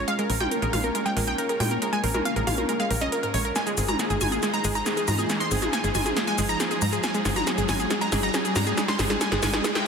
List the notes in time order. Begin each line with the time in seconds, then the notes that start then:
Already playing: C#4 F4 C#5, riser
0.08 G#3 A#3 F5, closed hi-hat
0.19 G#3 A#4, closed hi-hat
0.30 A#1 C4 A#4, open hi-hat
0.40 G#3 G5, closed hi-hat, mid tom
0.51 A#4, closed hi-hat
0.62 A#1 G#4 A#4, closed hi-hat
0.73 A#1 G#3 F5, open hi-hat, mid tom
0.84 A#4, closed hi-hat
0.95 G#3 A#4, closed hi-hat
1.06 G#3 G5, closed hi-hat
1.16 A#1 G#3 A#4, open hi-hat
1.27 D#4 G5, closed hi-hat
1.38 A#4, closed hi-hat
1.49 G#4 A#4, closed hi-hat
1.60 A#2 G#3 G5, open hi-hat, mid tom
1.71 A#4, closed hi-hat
1.82 G#3 A#4, closed hi-hat
1.93 G#3 G#5, closed hi-hat
2.04 A#1 C4 A#4, open hi-hat
2.14 G#3 A#4, closed hi-hat, mid tom
2.25 F5, closed hi-hat
2.36 A#1 G#4 A#4, closed hi-hat
2.47 A#1 G#3 F5, open hi-hat, mid tom
2.58 A#4, closed hi-hat, mid tom
2.69 G#3 A#4, closed hi-hat
2.80 G#3 F5, closed hi-hat
2.90 A#1 G3 A#4, open hi-hat
3.01 C#4 D#5, closed hi-hat
3.12 A#4, closed hi-hat
3.23 G#2 A#4, closed hi-hat
3.34 A#1 G#3 C#5, open hi-hat
3.45 A#4, closed hi-hat
3.56 G#3 D#4 F4 C5 G#5, snare, closed hi-hat, shaker
3.67 G#3 G#4, closed hi-hat, shaker
3.77 G#1 C4 G#4, open hi-hat, shaker
3.88 G#3 A#5, closed hi-hat, mid tom, shaker
3.99 G#4, snare, closed hi-hat, shaker
4.10 G#1 G#4, closed hi-hat, shaker
4.21 G#1 G#3 G#5, open hi-hat, mid tom, shaker
4.32 G#4, closed hi-hat, shaker
4.43 G#3 G#4, snare, closed hi-hat, shaker
4.54 G#3 A#5, closed hi-hat, shaker
4.64 G#1 G#3 G#4, open hi-hat, shaker
4.75 D#4 A#5, closed hi-hat, shaker
4.86 G#4, snare, closed hi-hat, shaker
4.97 G#4, closed hi-hat, shaker
5.08 G#2 G#3 A#5, open hi-hat, mid tom, shaker
5.19 G#4, closed hi-hat, shaker
5.29 G#3 G#4, snare, closed hi-hat, shaker
5.40 G#3 C6, closed hi-hat, shaker
5.51 G#1 C4 G#4, open hi-hat, shaker
5.62 G#3 G#4, closed hi-hat, mid tom, shaker
5.73 G#5, snare, closed hi-hat, shaker
5.84 G#1 G#4, closed hi-hat, shaker
5.95 G#1 G#3 G#5, open hi-hat, mid tom, shaker
6.06 G#4, closed hi-hat, mid tom, shaker
6.17 G#3 G#4, snare, closed hi-hat, shaker
6.27 G#3 G#5, closed hi-hat, shaker
6.38 G#1 G#3 G#4, open hi-hat, shaker
6.49 D#4 A#5, closed hi-hat, shaker
6.60 G#4, snare, closed hi-hat, shaker
6.71 G#4, closed hi-hat, shaker
6.82 G#2 G#3 A#5, open hi-hat, shaker
6.93 G#4, closed hi-hat, shaker
7.04 G#3 G#5, snare, closed hi-hat, shaker
7.14 G#3 G#4, closed hi-hat, shaker
7.25 G#1 C4 G#4, snare, open hi-hat, shaker
7.36 G#3 A#5, closed hi-hat, mid tom, shaker
7.47 G#4, snare, closed hi-hat, shaker
7.58 G#1 G#4, closed hi-hat, shaker
7.69 G#1 G#3 G#5, snare, open hi-hat, mid tom, shaker
7.80 G#4, closed hi-hat, shaker
7.90 G#3 G#4, snare, closed hi-hat, shaker
8.01 G#3 A#5, closed hi-hat, shaker
8.12 G#1 G#3 G#4, snare, open hi-hat, shaker
8.23 D#4 A#5, closed hi-hat, shaker
8.34 G#4, snare, closed hi-hat, shaker
8.45 G#4, closed hi-hat, shaker
8.56 G#2 G#3 A#5, snare, open hi-hat, mid tom, shaker
8.67 G#4, closed hi-hat, shaker
8.77 G#3 G#4, snare, closed hi-hat, shaker
8.88 G#3 C6, snare, closed hi-hat, shaker
8.99 G#1 C4 G#4, snare, open hi-hat, shaker
9.10 G#3 G#4, snare, closed hi-hat, mid tom, shaker
9.21 G#5, snare, closed hi-hat, shaker
9.32 G#1 G#4, snare, closed hi-hat, shaker
9.43 G#1 G#3 G#5, snare, open hi-hat, mid tom, shaker
9.53 G#4, snare, closed hi-hat, mid tom, shaker
9.64 G#3 G#4, snare, closed hi-hat, reverse cymbal, shaker
9.75 G#3 G5, snare, closed hi-hat, shaker